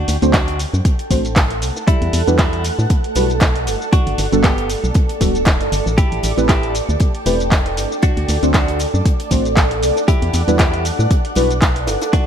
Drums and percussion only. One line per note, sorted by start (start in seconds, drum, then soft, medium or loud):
0.08 snare medium
0.08 closed hi-hat medium
0.08 open hi-hat loud
0.08 shaker medium
0.22 closed hi-hat soft
0.22 shaker soft
0.34 kick loud
0.34 snare loud
0.34 clap loud
0.34 closed hi-hat medium
0.34 shaker soft
0.48 closed hi-hat medium
0.48 closed hi-hat soft
0.59 closed hi-hat medium
0.59 open hi-hat loud
0.59 shaker medium
0.74 shaker soft
0.85 kick loud
0.85 closed hi-hat medium
0.85 shaker soft
0.99 closed hi-hat medium
0.99 closed hi-hat soft
1.11 kick medium
1.11 closed hi-hat medium
1.11 open hi-hat loud
1.11 shaker medium
1.25 closed hi-hat soft
1.25 shaker soft
1.36 kick loud
1.36 snare loud
1.36 clap loud
1.36 closed hi-hat medium
1.36 closed hi-hat loud
1.36 shaker soft
1.50 snare soft
1.50 closed hi-hat medium
1.62 closed hi-hat medium
1.62 open hi-hat loud
1.62 shaker medium
1.76 snare medium
1.76 shaker soft
1.88 kick loud
1.88 closed hi-hat medium
1.88 shaker soft
2.02 closed hi-hat soft
2.13 closed hi-hat medium
2.13 open hi-hat loud
2.13 shaker medium
2.27 closed hi-hat soft
2.27 shaker soft
2.39 kick loud
2.39 snare loud
2.39 clap loud
2.39 closed hi-hat medium
2.39 shaker soft
2.53 closed hi-hat medium
2.64 closed hi-hat medium
2.64 open hi-hat loud
2.64 shaker medium
2.79 shaker soft
2.90 kick loud
2.90 closed hi-hat medium
2.90 shaker soft
3.04 closed hi-hat medium
3.15 closed hi-hat medium
3.15 open hi-hat loud
3.15 shaker medium
3.30 closed hi-hat soft
3.30 shaker soft
3.40 kick loud
3.40 snare loud
3.40 clap loud
3.40 closed hi-hat medium
3.40 shaker soft
3.56 snare soft
3.56 closed hi-hat medium
3.67 closed hi-hat medium
3.67 open hi-hat loud
3.67 shaker medium
3.82 snare soft
3.82 shaker soft
3.93 kick loud
3.93 closed hi-hat medium
3.93 shaker soft
4.07 closed hi-hat soft
4.18 snare medium
4.18 closed hi-hat medium
4.18 open hi-hat loud
4.18 shaker medium
4.33 closed hi-hat soft
4.33 shaker soft
4.44 kick loud
4.44 snare loud
4.44 clap loud
4.44 closed hi-hat medium
4.44 shaker soft
4.58 closed hi-hat soft
4.69 closed hi-hat medium
4.69 open hi-hat loud
4.69 shaker medium
4.84 shaker soft
4.94 kick loud
4.94 closed hi-hat medium
4.94 shaker soft
5.09 closed hi-hat medium
5.09 closed hi-hat soft
5.21 kick medium
5.21 closed hi-hat medium
5.21 open hi-hat loud
5.21 shaker medium
5.35 closed hi-hat soft
5.35 shaker soft
5.45 kick loud
5.45 snare loud
5.45 clap loud
5.45 closed hi-hat medium
5.45 shaker soft
5.61 snare soft
5.61 closed hi-hat soft
5.72 closed hi-hat medium
5.72 open hi-hat loud
5.72 shaker medium
5.86 snare medium
5.86 shaker soft
5.98 kick loud
5.98 closed hi-hat medium
5.98 shaker soft
6.12 closed hi-hat soft
6.23 closed hi-hat medium
6.23 open hi-hat loud
6.23 shaker medium
6.38 closed hi-hat soft
6.38 shaker soft
6.49 kick loud
6.49 snare loud
6.49 clap loud
6.49 closed hi-hat medium
6.49 shaker soft
6.63 closed hi-hat soft
6.75 closed hi-hat medium
6.75 open hi-hat medium
6.75 shaker medium
6.90 shaker soft
7.00 kick loud
7.00 closed hi-hat medium
7.00 shaker soft
7.15 closed hi-hat medium
7.26 closed hi-hat medium
7.26 open hi-hat loud
7.26 shaker medium
7.40 closed hi-hat soft
7.40 shaker soft
7.51 kick loud
7.51 snare loud
7.51 clap loud
7.51 closed hi-hat medium
7.51 shaker soft
7.66 snare soft
7.66 closed hi-hat soft
7.77 closed hi-hat medium
7.77 open hi-hat medium
7.77 shaker medium
7.91 snare soft
7.91 shaker soft
8.02 kick loud
8.02 closed hi-hat medium
8.02 shaker soft
8.17 closed hi-hat soft
8.29 snare medium
8.29 closed hi-hat medium
8.29 open hi-hat loud
8.29 shaker medium
8.43 closed hi-hat soft
8.43 shaker soft
8.54 kick loud
8.54 snare loud
8.54 clap loud
8.54 closed hi-hat medium
8.54 shaker soft
8.68 closed hi-hat soft
8.79 closed hi-hat medium
8.79 open hi-hat loud
8.79 shaker medium
8.95 shaker soft
9.05 kick loud
9.05 closed hi-hat medium
9.05 shaker soft
9.20 closed hi-hat medium
9.20 closed hi-hat soft
9.31 kick medium
9.31 closed hi-hat medium
9.31 open hi-hat loud
9.31 shaker medium
9.45 closed hi-hat soft
9.45 shaker soft
9.56 kick loud
9.56 snare loud
9.56 clap loud
9.56 closed hi-hat medium
9.56 shaker soft
9.71 snare soft
9.71 closed hi-hat medium
9.83 closed hi-hat medium
9.83 open hi-hat medium
9.83 shaker medium
9.96 snare medium
9.96 shaker soft
10.08 kick loud
10.08 closed hi-hat medium
10.08 shaker soft
10.22 closed hi-hat medium
10.33 closed hi-hat medium
10.33 open hi-hat loud
10.33 shaker medium
10.48 closed hi-hat soft
10.48 shaker soft
10.59 kick loud
10.59 snare loud
10.59 clap loud
10.59 closed hi-hat loud
10.59 closed hi-hat medium
10.59 shaker soft
10.74 closed hi-hat medium
10.85 closed hi-hat medium
10.85 open hi-hat loud
10.85 shaker medium
11.00 shaker soft
11.11 kick loud
11.11 closed hi-hat medium
11.11 shaker soft
11.25 closed hi-hat medium
11.35 closed hi-hat medium
11.35 open hi-hat loud
11.35 shaker medium
11.50 closed hi-hat soft
11.50 shaker soft
11.62 kick loud
11.62 snare loud
11.62 clap loud
11.62 closed hi-hat medium
11.62 shaker soft
11.76 snare soft
11.76 closed hi-hat medium
11.87 snare loud
11.87 closed hi-hat medium
11.87 open hi-hat medium
11.87 shaker medium
12.01 snare loud
12.01 closed hi-hat medium
12.01 shaker medium
12.13 kick loud
12.13 snare loud
12.13 closed hi-hat medium
12.13 shaker soft